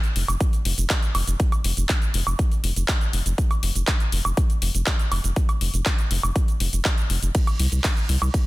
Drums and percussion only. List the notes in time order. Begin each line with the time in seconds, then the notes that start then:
0.04 closed hi-hat, shaker
0.16 open hi-hat
0.28 closed hi-hat, high woodblock, shaker
0.41 kick, closed hi-hat, shaker
0.53 closed hi-hat, shaker
0.65 open hi-hat
0.78 closed hi-hat, shaker
0.90 kick, clap, closed hi-hat, shaker
1.03 closed hi-hat, shaker
1.15 open hi-hat, high woodblock
1.27 closed hi-hat, shaker
1.40 kick, closed hi-hat, shaker
1.52 closed hi-hat, high woodblock, shaker
1.64 open hi-hat
1.77 closed hi-hat, shaker
1.89 kick, clap, closed hi-hat, shaker
2.02 closed hi-hat, shaker
2.14 open hi-hat
2.27 closed hi-hat, high woodblock, shaker
2.39 kick, closed hi-hat, shaker
2.52 closed hi-hat, shaker
2.64 open hi-hat
2.76 closed hi-hat, shaker
2.88 kick, clap, closed hi-hat, shaker
3.01 closed hi-hat, shaker
3.13 open hi-hat
3.26 closed hi-hat, shaker
3.38 kick, closed hi-hat, shaker
3.51 closed hi-hat, high woodblock, shaker
3.63 open hi-hat
3.75 closed hi-hat, shaker
3.87 kick, clap, closed hi-hat, shaker
4.00 closed hi-hat, shaker
4.12 open hi-hat
4.25 closed hi-hat, high woodblock, shaker
4.37 kick, closed hi-hat, shaker
4.50 closed hi-hat, shaker
4.62 open hi-hat
4.75 closed hi-hat, shaker
4.87 kick, clap, closed hi-hat, shaker
4.99 closed hi-hat, shaker
5.12 open hi-hat, high woodblock
5.24 closed hi-hat, shaker
5.36 kick, closed hi-hat, shaker
5.49 closed hi-hat, high woodblock, shaker
5.61 open hi-hat
5.74 closed hi-hat, shaker
5.86 kick, clap, closed hi-hat, shaker
5.99 closed hi-hat, shaker
6.11 open hi-hat
6.23 closed hi-hat, high woodblock, shaker
6.36 kick, closed hi-hat, shaker
6.48 closed hi-hat, shaker
6.60 open hi-hat
6.73 closed hi-hat, shaker
6.85 kick, clap, closed hi-hat, shaker
6.98 closed hi-hat, shaker
7.10 open hi-hat
7.22 closed hi-hat, shaker
7.35 kick, closed hi-hat, ride, shaker
7.47 closed hi-hat, high woodblock, shaker
7.60 open hi-hat
7.72 closed hi-hat, shaker
7.84 kick, clap, closed hi-hat, ride, shaker
7.97 closed hi-hat, shaker
8.09 open hi-hat
8.22 closed hi-hat, high woodblock, shaker
8.34 kick, closed hi-hat, ride, shaker